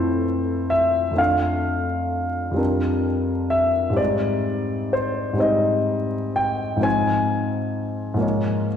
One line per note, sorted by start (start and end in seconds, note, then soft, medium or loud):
0.00 1.11 F2 soft
0.00 1.14 A3 soft
0.00 1.15 C4 soft
0.00 1.21 E4 soft
0.00 1.18 A4 medium
0.00 1.21 B4 soft
0.00 0.71 C5 medium
0.70 1.18 E5 medium
1.11 2.50 F2 soft
1.11 2.53 A3 soft
1.11 2.53 C4 soft
1.16 2.54 D4 soft
1.16 2.55 A4 soft
1.16 3.06 F5 medium
2.51 3.91 F2 soft
2.51 3.90 G3 soft
2.51 3.91 C4 soft
2.56 3.93 D4 soft
2.56 3.94 A#4 soft
3.50 3.98 E5 medium
3.90 5.31 G#2 soft
3.90 5.33 G3 soft
3.90 5.35 C4 soft
3.95 5.36 D#4 soft
3.95 4.91 C5 soft
3.95 4.93 D5 medium
4.93 5.38 C5 medium
5.33 6.75 G#2 soft
5.33 6.77 G3 soft
5.33 6.78 C4 soft
5.38 6.79 D#4 soft
5.38 6.80 C5 soft
5.38 6.37 D#5 medium
6.36 6.84 G5 medium
6.76 8.12 G#2 soft
6.76 8.14 F3 soft
6.76 8.16 C4 soft
6.81 8.17 D#4 soft
6.81 8.18 C5 soft
6.81 8.68 G#5 medium
8.14 8.77 G#2 soft
8.14 8.77 F3 soft
8.14 8.77 A#3 soft
8.19 8.77 D#4 soft
8.19 8.77 C#5 soft